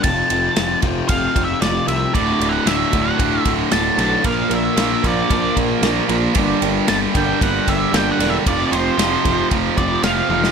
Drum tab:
RD |x-x-x-x-x-x-x-x-|x-x-x-x-x-x-x-x-|x-x-x-x-x-x-x-x-|x-x-x-x-x-x-x-x-|
SD |----o-------o---|----o-------o---|----o-------o---|----o-------o---|
T1 |----------------|----------------|----------------|----------------|
BD |o-----o-o-o-----|o-----o-o-o-----|o-----o-o-o-----|o-----o-o-o-----|

RD |x-x-x-x-x-x-x---|
SD |----o-------o--o|
T1 |--------------o-|
BD |o-----o-o-o-----|